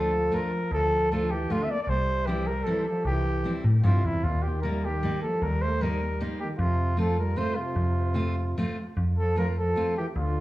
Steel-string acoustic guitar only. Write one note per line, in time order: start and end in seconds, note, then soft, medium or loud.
0.00 0.10 A3 medium
0.00 0.11 D4 medium
0.00 0.11 F4 medium
0.32 0.50 A3 medium
0.32 0.50 D4 medium
0.32 0.51 F4 medium
1.12 1.29 A3 medium
1.12 1.29 D4 soft
1.12 1.29 F4 medium
1.50 1.67 A3 medium
1.50 1.67 D4 medium
1.50 1.68 F4 medium
2.27 2.45 G3 medium
2.27 2.45 C4 medium
2.27 2.46 E4 medium
2.66 2.84 G3 medium
2.66 2.84 C4 medium
2.66 2.85 E4 medium
3.44 3.62 G3 soft
3.44 3.63 C4 medium
3.44 3.63 E4 medium
3.83 4.02 G3 medium
3.83 4.02 C4 medium
3.83 4.03 E4 medium
4.63 4.81 G3 medium
4.63 4.82 A#3 soft
4.63 4.82 D#4 medium
5.03 5.21 G3 medium
5.03 5.21 A#3 medium
5.03 5.22 D#4 medium
5.81 5.99 G3 medium
5.81 6.00 A#3 medium
5.81 6.00 D#4 medium
6.21 6.38 G3 medium
6.21 6.39 A#3 medium
6.21 6.39 D#4 medium
6.97 7.16 A3 medium
6.97 7.16 C4 medium
6.97 7.16 F4 medium
7.36 7.55 A3 medium
7.36 7.55 C4 medium
7.36 7.56 F4 medium
8.14 8.34 A3 medium
8.14 8.34 C4 medium
8.14 8.34 F4 medium
8.58 8.76 A3 medium
8.58 8.76 C4 medium
8.58 8.76 F4 medium
9.36 9.55 A3 medium
9.36 9.55 C4 soft
9.36 9.56 F4 medium
9.76 9.95 A3 medium
9.76 9.95 C4 medium
9.76 9.95 F4 medium